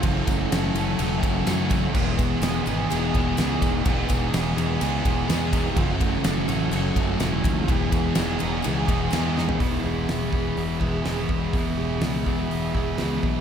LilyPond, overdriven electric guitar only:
\new Staff \with { instrumentName = "Overdriven electric guitar" } { \clef bass \time 4/4 \key e \major \tempo 4 = 125 <fis, cis fis a cis' fis'>4 <fis a cis' fis'>8 <fis a cis' fis'>8 <fis, cis fis a cis' fis'>4 <fis a cis' fis'>4 | <e, b, e gis b gis'>4 <e gis b gis'>8 <e gis b gis'>8 <e, b, e gis b gis'>4 <e gis b gis'>4 | <e, b, e gis b gis'>4 <e gis b gis'>8 <e gis b gis'>8 <e, b, e gis b gis'>4 <e gis b gis'>4 | <fis, cis fis a cis' fis'>4 <fis a cis' fis'>8 <fis a cis' fis'>8 <fis, cis fis a cis' fis'>4 <fis a cis' fis'>4 |
<e, b, e gis b gis'>4 <e gis b gis'>8 <e gis b gis'>8 <e, b, e gis b gis'>4 <e gis b gis'>4 | <e, b, e gis b e'>2~ <e, b, e gis b e'>8 <e, b, e gis b e'>8 <e, b, e gis b e'>4 | <e, b, e gis b e'>2~ <e, b, e gis b e'>8 <e, b, e gis b e'>8 <e, b, e gis b e'>4 | }